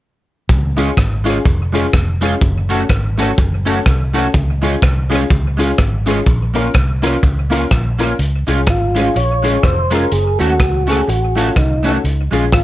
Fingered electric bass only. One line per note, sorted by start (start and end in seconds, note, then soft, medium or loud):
0.50 0.90 C#2 loud
0.97 1.38 G#1 medium
1.46 1.86 F1 medium
1.94 2.34 F1 loud
2.42 2.83 F#1 loud
2.90 3.30 G#1 loud
3.38 3.79 F#1 medium
3.86 4.27 C2 medium
4.34 4.75 C#2 loud
4.82 5.23 C2 loud
5.30 5.71 C#2 loud
5.79 6.20 G#1 medium
6.26 6.67 A#1 loud
6.75 7.16 C2 medium
7.23 7.64 C#2 medium
7.71 8.12 A#1 medium
8.19 8.43 C#2 loud
8.48 8.64 C2 medium
8.67 9.08 G#1 loud
9.16 9.57 A#1 medium
9.63 10.05 F1 medium
10.12 10.36 F#1 loud
10.40 10.57 D#2 medium
10.60 11.01 C#2 loud
11.08 11.49 A1 loud
11.56 11.97 C2 medium
12.04 12.28 C#2 loud
12.32 12.49 A#1 medium
12.52 12.64 G#1 medium